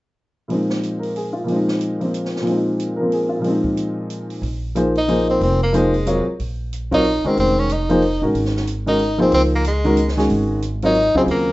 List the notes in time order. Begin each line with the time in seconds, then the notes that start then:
0.48 A#2 F3 G#3, open hi-hat
0.52 C4 D#4
0.70 snare
0.83 closed hi-hat
1.00 A#4, open hi-hat
1.16 G#4, open hi-hat
1.33 F4
1.44 A#2 F3
1.48 G#3 C4, open hi-hat
1.55 D#4
1.68 snare
1.81 closed hi-hat
2.00 F3 A#3 C4, open hi-hat
2.14 closed hi-hat
2.25 snare
2.36 snare
2.41 A#2 F3
2.47 G#3 C4, open hi-hat
2.52 D#4
2.80 closed hi-hat
2.96 F3 A#4
3.02 A#3 C4
3.12 G#4, open hi-hat
3.29 F4
3.39 A#2 F3
3.44 G#3 C4, open hi-hat
3.50 D#4
3.64 kick
3.77 closed hi-hat
4.10 closed hi-hat
4.30 open hi-hat
4.42 A#1, open hi-hat
4.75 F3 A#3 D#4 G#4 C5, closed hi-hat
4.95 D#4, open hi-hat
5.08 F3 A#3 D#4 G#4 C5, open hi-hat
5.30 C4
5.41 F1 C4, open hi-hat
5.63 A#3
5.73 F3 G#3 A#3 D#4 G#4 C5, closed hi-hat
5.94 open hi-hat
6.06 F#3 C4 F4 A#4 C#5, closed hi-hat
6.27 muted upright bass stroke
6.40 A#1, open hi-hat
6.73 closed hi-hat
6.91 F#3 C4 D#4 F4 A#4 C#5, kick, open hi-hat
7.05 open hi-hat
7.24 D#3 G#3 C4 C#4 F#4 A#4, muted upright bass stroke
7.37 F1 C4, open hi-hat
7.59 C#4
7.69 D#4, closed hi-hat
7.89 F3 A#3 D#4 G#4 C5, open hi-hat
8.02 open hi-hat
8.21 A1 D#3 G#3 C#4 F#4 A#4
8.34 G#1, open hi-hat
8.45 snare
8.57 snare
8.67 closed hi-hat
8.86 D#3 G#3 C#4 D#4 F#4 A#4, open hi-hat
8.99 open hi-hat
9.18 F3 A#3 C4 D#4 G#4 C5
9.32 C#2 C4, open hi-hat
9.55 A#3
9.64 G#3, closed hi-hat
9.84 D#3 G#3 C#4 F#4 A#4, open hi-hat
9.97 closed hi-hat
10.08 snare
10.16 D#3 G#3 C#4 F#4 G#4, snare, open hi-hat
10.29 G#1, open hi-hat
10.62 closed hi-hat
10.82 F#3 C4 D#4 F4 A#4 C#5, open hi-hat
10.95 open hi-hat
11.15 C#3 F#3 C4 F4 G#4, muted upright bass stroke, kick
11.26 D#2, open hi-hat
11.31 A#3